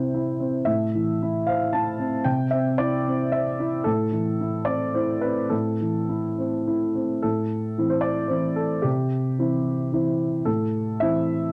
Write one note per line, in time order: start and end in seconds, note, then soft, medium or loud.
0.00 0.62 C3 soft
0.00 0.40 C4 soft
0.00 0.14 E4 soft
0.00 0.65 C5 soft
0.14 0.56 E4 soft
0.40 0.67 C4 soft
0.65 2.22 A2 soft
0.65 1.46 E5 medium
0.95 1.37 E3 soft
1.22 1.64 E4 soft
1.47 1.89 C5 soft
1.47 1.73 F5 medium
1.73 2.16 E4 soft
1.73 2.25 A5 medium
1.99 2.26 C4 soft
2.24 3.82 C3 soft
2.24 2.52 G5 medium
2.51 2.95 C4 soft
2.51 2.78 E5 medium
2.78 3.22 E4 soft
2.78 3.32 D5 medium
3.07 3.49 C4 soft
3.32 3.76 C5 soft
3.32 3.86 E5 medium
3.60 3.86 E4 soft
3.84 5.49 A2 soft
3.84 4.67 A4 medium
4.12 4.56 E3 soft
4.41 4.85 E4 soft
4.65 5.12 C4 soft
4.65 4.94 D5 medium
4.94 5.41 E4 soft
4.94 5.23 C5 soft
5.21 5.69 C4 soft
5.21 5.51 B4 soft
5.50 7.19 A2 soft
5.50 6.95 A4 soft
5.81 6.27 E3 soft
6.09 6.56 E4 soft
6.38 6.84 C4 soft
6.67 7.13 E4 soft
6.95 7.23 C4 soft
7.22 7.76 A2 soft
7.22 7.91 A4 soft
7.78 8.28 E3 soft
7.78 8.29 C4 soft
7.78 8.29 E4 soft
7.90 8.04 C5 soft
8.01 8.30 D5 medium
8.28 8.81 E3 soft
8.28 8.81 C4 soft
8.28 8.81 E4 soft
8.28 8.57 C5 soft
8.56 8.85 A4 soft
8.82 9.37 C3 soft
8.82 10.19 G4 soft
9.39 9.89 E3 soft
9.39 9.89 C4 soft
9.39 9.90 E4 soft
9.93 10.43 E3 soft
9.93 10.43 C4 soft
9.93 10.43 E4 soft
10.45 10.99 A2 soft
10.45 11.00 A4 soft
11.00 11.51 E3 soft
11.00 11.51 C4 soft
11.00 11.51 E4 soft
11.00 11.52 E5 medium